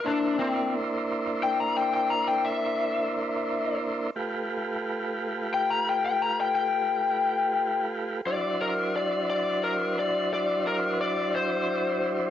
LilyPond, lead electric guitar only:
\new Staff \with { instrumentName = "Lead electric guitar" } { \time 12/8 \key c \major \tempo 4. = 59 d'8 c'8 r4 g''16 bes''16 g''16 g''16 bes''16 g''16 e''2 r8 | r2 g''16 bes''16 g''16 g''16 bes''16 g''16 g''2 r8 | d''8 bes'8 d''8 d''8 bes'8 d''8 d''8 bes'8 d''8 c''4. | }